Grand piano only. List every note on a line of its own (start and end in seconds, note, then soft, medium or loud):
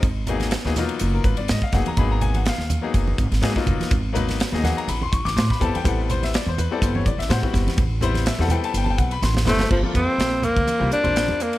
0.27 0.50 F#3 medium
0.27 0.51 A#3 medium
0.27 0.51 B3 medium
0.27 0.51 D#4 medium
0.27 0.51 G#4 loud
0.65 0.72 F#3 medium
0.65 0.72 A#3 medium
0.65 0.72 B3 medium
0.65 0.73 D#4 medium
0.65 0.73 G#4 medium
0.77 1.37 F#3 medium
0.77 1.37 A#3 medium
0.77 1.38 B3 medium
0.77 1.38 D#4 medium
0.77 1.38 F4 medium
1.14 1.25 A#4 medium
1.24 1.37 B4 medium
1.37 1.48 D5 medium
1.50 1.62 D#5 medium
1.63 1.73 F5 medium
1.73 1.89 F#3 medium
1.73 1.89 A#3 medium
1.73 1.89 B3 medium
1.73 1.89 D#4 medium
1.73 1.90 G#4 medium
1.73 1.86 F#5 medium
1.87 1.98 A#5 medium
1.97 2.50 F#3 medium
1.97 2.50 A#3 medium
1.97 2.50 B3 medium
1.97 2.50 D#4 medium
1.97 2.51 G#4 medium
1.97 2.11 B5 medium
2.11 2.22 A#5 medium
2.22 2.35 G#5 loud
2.36 2.46 F#5 medium
2.49 3.89 F5 medium
2.81 3.19 F#3 medium
2.81 3.19 A#3 medium
2.81 3.19 B3 medium
2.81 3.19 D#4 medium
2.81 3.20 G#4 medium
3.42 3.50 F#3 medium
3.42 3.50 A#3 medium
3.42 3.51 B3 medium
3.42 3.51 D#4 medium
3.42 3.51 G#4 medium
3.55 3.92 F#3 medium
3.55 3.92 A#3 medium
3.55 3.92 B3 medium
3.55 3.93 D#4 medium
3.55 3.93 F4 loud
4.13 4.37 F#3 medium
4.13 4.37 A#3 medium
4.13 4.37 B3 medium
4.13 4.37 D#4 medium
4.13 4.38 B4 loud
4.52 4.60 F#3 medium
4.52 4.59 A#3 medium
4.52 4.60 B3 medium
4.52 4.60 D#4 medium
4.52 4.60 G#4 medium
4.52 4.64 D#5 medium
4.63 4.88 F#3 medium
4.63 4.88 A#3 medium
4.63 4.88 B3 medium
4.63 4.88 D#4 medium
4.63 4.89 G#4 medium
4.63 4.77 F#5 medium
4.77 4.88 A#5 medium
4.89 5.02 B5 medium
5.03 5.13 C6 medium
5.12 5.25 C#6 medium
5.25 5.36 D6 loud
5.37 5.50 C6 medium
5.51 5.61 B5 medium
5.60 5.76 G3 medium
5.60 5.77 B3 medium
5.60 5.77 C4 medium
5.60 5.77 E4 medium
5.60 5.77 A4 medium
5.60 5.74 A5 medium
5.76 5.86 G5 medium
5.84 6.37 G3 medium
5.84 6.37 B3 medium
5.84 6.37 C4 medium
5.84 6.37 E4 medium
5.84 6.00 A4 medium
5.89 6.00 F#5 medium
6.02 6.11 A4 medium
6.11 6.23 C5 medium
6.24 6.34 E5 medium
6.35 6.47 D5 medium
6.49 6.58 C5 medium
6.59 6.71 B4 medium
6.71 7.07 G3 medium
6.71 7.07 B3 medium
6.71 7.07 C4 medium
6.71 7.07 E4 medium
6.71 7.07 A4 medium
6.71 6.82 D5 medium
6.83 6.95 C5 medium
6.95 7.06 C#5 medium
7.06 7.19 D5 medium
7.19 7.30 E5 medium
7.29 7.38 G3 medium
7.29 7.38 B3 medium
7.29 7.38 C4 medium
7.29 7.38 E4 medium
7.29 7.38 C5 medium
7.29 7.45 F#5 medium
7.42 7.78 G3 medium
7.42 7.79 B3 medium
7.42 7.79 C4 medium
7.42 7.80 E4 medium
7.42 7.80 F#4 medium
8.02 8.24 G3 medium
8.02 8.25 B3 medium
8.02 8.25 C4 medium
8.02 8.25 E4 medium
8.02 8.25 C5 loud
8.28 8.40 E5 medium
8.39 8.46 G3 medium
8.39 8.46 B3 medium
8.39 8.46 C4 medium
8.39 8.47 E4 medium
8.39 8.47 A4 medium
8.39 8.51 F#5 medium
8.50 9.11 G3 medium
8.50 9.11 B3 medium
8.50 9.11 C4 medium
8.50 9.11 E4 medium
8.50 9.11 A4 medium
8.50 8.64 G5 medium
8.65 8.75 A5 loud
8.77 8.84 G5 medium
8.84 8.91 A5 medium
8.90 8.98 G5 medium
8.98 9.11 F#5 medium
9.12 9.23 B5 loud
9.23 9.58 C6 medium
9.46 9.62 G3 medium
9.46 9.63 B3 medium
9.46 9.63 C4 medium
9.46 9.63 E4 medium
9.46 9.63 C5 medium
9.69 9.78 G3 medium
9.69 9.79 A#3 medium
9.69 9.79 C4 medium
9.69 9.79 F4 medium
9.69 9.79 A4 medium
9.83 10.42 G3 medium
9.83 10.42 A#3 medium
9.83 10.42 C4 medium
9.83 10.43 F4 medium
9.83 10.43 A4 medium
10.79 10.94 G3 medium
10.79 10.94 A#3 medium
10.79 10.94 C4 medium
10.79 10.95 F4 medium
10.79 10.95 G4 medium
11.03 11.40 G3 medium
11.03 11.40 A#3 medium
11.03 11.40 C4 medium
11.03 11.40 F4 medium
11.03 11.41 C5 medium